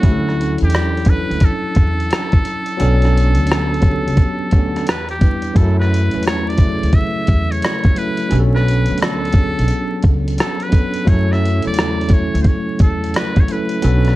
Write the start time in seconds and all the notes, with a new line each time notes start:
Already playing: F#4
0.01 D2 F#3 C#4 D4 E4, kick, closed hi-hat
0.05 G4
0.12 A4
0.29 cross-stick
0.41 closed hi-hat
0.58 E2, closed hi-hat
0.63 G4
0.70 closed hi-hat
0.75 cross-stick
0.97 closed hi-hat
1.05 F#3 C#4, kick, closed hi-hat
1.10 D4 E4 A4 B4
1.31 D2, closed hi-hat
1.40 kick, closed hi-hat
1.45 A4
1.75 E2, kick, closed hi-hat
2.00 closed hi-hat
2.11 cross-stick, closed hi-hat
2.32 kick, closed hi-hat
2.45 closed hi-hat
2.66 closed hi-hat
2.77 B1 F#3 B3 C#4 D4, closed hi-hat
2.81 A4
3.02 cross-stick, closed hi-hat
3.17 closed hi-hat
3.35 D2, closed hi-hat
3.47 closed hi-hat
3.52 cross-stick
3.74 closed hi-hat
3.81 F#3 B3 C#4 D4 G4, kick, closed hi-hat
3.91 A4
4.07 C#2, closed hi-hat
4.17 kick, closed hi-hat
4.51 D2 F#3 B3 C#4, kick, closed hi-hat
4.56 D4 A4
4.76 cross-stick, closed hi-hat
4.87 E2 B4, cross-stick, closed hi-hat
5.09 G4, closed hi-hat
5.19 G3 B3 D4 E4, kick, closed hi-hat
5.23 B4
5.42 closed hi-hat
5.53 F#2 F#3 A3 C#4 E4 A4, kick, closed hi-hat
5.57 A4
5.79 B4, cross-stick
5.94 closed hi-hat
6.11 E2 F#3 A3 C#4, closed hi-hat
6.16 E4 B4
6.23 C#5, closed hi-hat
6.27 cross-stick
6.49 D5, closed hi-hat
6.56 C#3 F#3 A3 E4, kick, closed hi-hat
6.61 G#4
6.67 A4
6.83 D2, closed hi-hat
6.93 E5, kick, closed hi-hat
7.27 E2, kick, closed hi-hat
7.51 C#5, closed hi-hat
7.62 cross-stick, closed hi-hat
7.84 kick, closed hi-hat
7.96 F#3 A3 C#4 E4 B4, closed hi-hat
8.00 A4
8.17 closed hi-hat
8.29 B1 F#3 B3 C#4 D4, closed hi-hat
8.33 G4
8.40 A4
8.55 B4, cross-stick
8.68 closed hi-hat
8.86 D2, closed hi-hat
8.98 A4, closed hi-hat
9.02 cross-stick
9.25 closed hi-hat
9.32 F#3 B3 C#4, kick, closed hi-hat
9.37 D4 G#4
9.44 A4
9.59 B1, closed hi-hat
9.68 closed hi-hat
10.03 C#2, kick, closed hi-hat
10.28 closed hi-hat
10.38 A4, cross-stick, closed hi-hat
10.60 B4, closed hi-hat
10.69 F#3 B3 C#4 D4, closed hi-hat
10.73 A4, kick
10.94 closed hi-hat
11.05 F#2 F#3 A3 C#4 E4, kick, closed hi-hat
11.09 A4 C#5
11.32 E5, cross-stick
11.45 closed hi-hat
11.62 E2 C#3 F#3 A3 E4, closed hi-hat
11.66 A4 D5
11.74 closed hi-hat
11.79 cross-stick
12.01 closed hi-hat
12.07 F#3 A3 C#4 E4 A4, kick, closed hi-hat
12.13 C#5
12.34 D2, closed hi-hat
12.42 C5, kick, closed hi-hat
12.47 C#5
12.79 E2 A4, kick, closed hi-hat
13.04 closed hi-hat
13.14 B4, cross-stick, closed hi-hat
13.36 C#5, kick, closed hi-hat
13.48 F#3 A3 C#4 E4 B4, closed hi-hat
13.52 A4
13.69 closed hi-hat
13.81 B1 F#3 B3 C#4 D4, closed hi-hat
13.86 A4
14.05 cross-stick, closed hi-hat